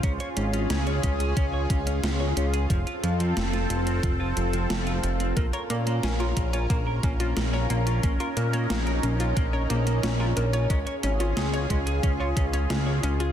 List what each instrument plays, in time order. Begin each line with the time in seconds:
Already playing: analog synth pad F4
0.03 analog synth bass C#2, analog synth pad C#4 G#4, clean electric guitar C#4, kick, closed hi-hat
0.20 clean electric guitar C#5, closed hi-hat
0.37 analog synth bass G#1, clean electric guitar C#4, closed hi-hat
0.53 clean electric guitar C#4, closed hi-hat
0.70 analog synth bass C#2, clean electric guitar C#4, snare, closed hi-hat
0.87 clean electric guitar C#5, closed hi-hat
1.03 analog synth bass C#2, clean electric guitar C#4, kick, closed hi-hat
1.20 clean electric guitar G#4, closed hi-hat
1.37 analog synth bass C#2, clean electric guitar C#4, kick, closed hi-hat
1.54 clean electric guitar C#5
1.70 analog synth bass C#2, clean electric guitar C#4, kick, closed hi-hat
1.87 clean electric guitar C#4, closed hi-hat
2.03 analog synth bass C#2, clean electric guitar C#4, snare, closed hi-hat
2.20 clean electric guitar C#5
2.37 analog synth bass C#2, clean electric guitar C#4, closed hi-hat
2.53 clean electric guitar G#4, closed hi-hat
2.70 analog synth bass F1, clean electric guitar F3, analog synth pad C4 A4, kick, closed hi-hat
2.87 clean electric guitar F4, closed hi-hat
3.03 analog synth bass F2, clean electric guitar F3, closed hi-hat
3.20 clean electric guitar F3, closed hi-hat
3.37 analog synth bass F1, clean electric guitar F3, snare, closed hi-hat
3.53 clean electric guitar F4, snare, closed hi-hat
3.70 analog synth bass F1, clean electric guitar F3, closed hi-hat
3.87 clean electric guitar C4, closed hi-hat
4.03 analog synth bass F1, clean electric guitar F3, kick, closed hi-hat
4.20 clean electric guitar F4
4.37 analog synth bass F1, clean electric guitar F3, closed hi-hat
4.53 clean electric guitar F3, closed hi-hat
4.70 analog synth bass F1, clean electric guitar F3, snare, closed hi-hat
4.87 clean electric guitar F4, closed hi-hat
5.03 analog synth bass F1, clean electric guitar F3, closed hi-hat
5.20 clean electric guitar C4, closed hi-hat
5.37 analog synth bass A#1, clean electric guitar A#3, analog synth pad C#4 A#4, synth arpeggio sound A#4, kick, closed hi-hat
5.53 clean electric guitar A#4, synth arpeggio sound C#5, closed hi-hat
5.70 analog synth bass A#2, synth arpeggio sound A#3, clean electric guitar A#3, closed hi-hat
5.87 clean electric guitar A#3, closed hi-hat
6.03 analog synth bass A#1, clean electric guitar A#3, synth arpeggio sound C#4, snare, closed hi-hat
6.20 synth arpeggio sound F4, clean electric guitar A#4, closed hi-hat
6.37 analog synth bass A#1, clean electric guitar A#3, synth arpeggio sound A#4, kick, closed hi-hat
6.53 clean electric guitar F4, synth arpeggio sound C#5, closed hi-hat
6.70 analog synth bass A#1, clean electric guitar A#3, synth arpeggio sound A#3, kick, closed hi-hat
6.87 clean electric guitar A#4
7.03 analog synth bass A#1, clean electric guitar A#3, synth arpeggio sound C#4, kick, closed hi-hat
7.20 clean electric guitar A#3, synth arpeggio sound F4, closed hi-hat
7.37 analog synth bass A#1, clean electric guitar A#3, synth arpeggio sound A#4, snare, closed hi-hat
7.53 clean electric guitar A#4, synth arpeggio sound C#5
7.70 analog synth bass A#1, synth arpeggio sound A#3, clean electric guitar A#3, closed hi-hat
7.87 clean electric guitar F4, closed hi-hat
8.03 analog synth bass A#1, clean electric guitar A#3, synth arpeggio sound C#4, analog synth pad D#4, kick, closed hi-hat
8.20 synth arpeggio sound F4, clean electric guitar A#4, closed hi-hat
8.37 analog synth bass A#2, clean electric guitar A#3, synth arpeggio sound A#4, closed hi-hat
8.53 clean electric guitar A#3, synth arpeggio sound C#5, closed hi-hat
8.70 analog synth bass A#1, synth arpeggio sound A#3, clean electric guitar A#3, snare, closed hi-hat
8.87 clean electric guitar A#4, closed hi-hat
9.03 analog synth bass A#1, clean electric guitar A#3, synth arpeggio sound C#4, closed hi-hat
9.20 synth arpeggio sound F4, clean electric guitar F4, closed hi-hat
9.37 analog synth bass A#1, clean electric guitar A#3, synth arpeggio sound A#4, kick, closed hi-hat
9.53 clean electric guitar A#4, synth arpeggio sound C#5
9.70 analog synth bass A#1, clean electric guitar A#3, synth arpeggio sound A#3, closed hi-hat
9.87 clean electric guitar A#3, closed hi-hat
10.03 analog synth bass A#1, clean electric guitar A#3, synth arpeggio sound C#4, snare, closed hi-hat
10.20 synth arpeggio sound F4, clean electric guitar A#4
10.37 analog synth bass A#1, clean electric guitar A#3, synth arpeggio sound A#4, closed hi-hat
10.53 clean electric guitar F4, synth arpeggio sound C#5, closed hi-hat
10.70 analog synth bass C#2, synth arpeggio sound G#3, clean electric guitar C#4, analog synth pad F4 G#4, kick, closed hi-hat
10.86 clean electric guitar C#5, closed hi-hat
11.03 analog synth bass G#1, clean electric guitar C#4, synth arpeggio sound C#4, closed hi-hat
11.20 clean electric guitar C#4, synth arpeggio sound F4, closed hi-hat
11.37 analog synth bass C#2, clean electric guitar C#4, synth arpeggio sound G#4, snare, closed hi-hat
11.53 clean electric guitar C#5, synth arpeggio sound C#5, closed hi-hat
11.70 analog synth bass C#2, synth arpeggio sound G#3, clean electric guitar C#4, kick, closed hi-hat
11.86 clean electric guitar G#4, closed hi-hat
12.03 analog synth bass C#2, clean electric guitar C#4, synth arpeggio sound C#4, kick, closed hi-hat
12.20 synth arpeggio sound F4, clean electric guitar C#5
12.36 analog synth bass C#2, clean electric guitar C#4, synth arpeggio sound G#4, kick, closed hi-hat
12.53 clean electric guitar C#4, synth arpeggio sound C#5, closed hi-hat
12.70 analog synth bass C#2, synth arpeggio sound G#3, clean electric guitar C#4, snare, closed hi-hat
12.86 clean electric guitar C#5
13.03 analog synth bass C#2, clean electric guitar C#4, synth arpeggio sound C#4, closed hi-hat
13.20 synth arpeggio sound F4, clean electric guitar G#4, closed hi-hat